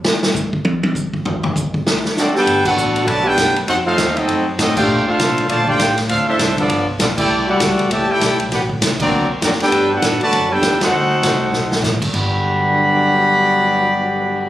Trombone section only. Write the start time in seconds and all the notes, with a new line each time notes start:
2.16 F#3 A3 D4
2.34 B3 D4 G4
2.64 B3 D4 F#4
3.06 D3 F#3 A3
3.25 B3 D4 G4
3.67 C4 D#4 F#4
3.85 A3 C4 F4
4.15 A3 C4 D#4
4.57 A3 C4 D#4
4.76 A3 D4 G4
5.06 A3 D4 F4
5.48 D3 F3 A3
5.66 A3 D4 G4
6.08 A3 C4 F4
6.27 A3 C4 E4
6.57 F3 B3 D4
6.98 F3 B3 D4
7.17 A3 E4 G4
7.47 G3 A3 F#4
7.90 A2 E3 A3
8.08 A3 E4 G4
8.51 F#4
9.00 F#3 A#3 D4
9.43 F#3 A#3 D4
9.61 B3 D4 G4
9.91 B3 D4 F#4
10.21 D3 F#3 A3
10.51 B3 D4 G4
10.82 A3 C4 F#4
12.14 G2 D3 F#3 B3